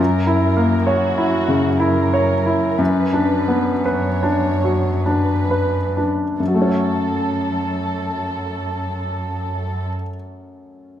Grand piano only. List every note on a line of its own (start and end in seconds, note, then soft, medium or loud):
0.00 2.75 F#2 soft
0.27 0.75 E4 soft
0.57 1.05 A#3 soft
0.87 1.36 C#5 soft
1.18 1.68 E4 soft
1.48 2.00 C#3 soft
1.80 2.32 E4 soft
2.13 2.66 C#5 soft
2.46 2.79 E4 soft
2.78 6.35 F#2 soft
3.13 3.71 D4 soft
3.48 4.08 B3 soft
3.86 4.48 B4 soft
4.23 4.88 D4 soft
4.64 5.31 F#3 soft
5.06 5.77 D4 soft
5.51 6.23 B4 soft
5.97 6.40 D4 soft
6.40 9.87 F#2 soft
6.48 9.95 F#3 soft
6.54 10.02 A3 soft
6.62 10.09 C#4 soft
6.69 10.16 C#5 soft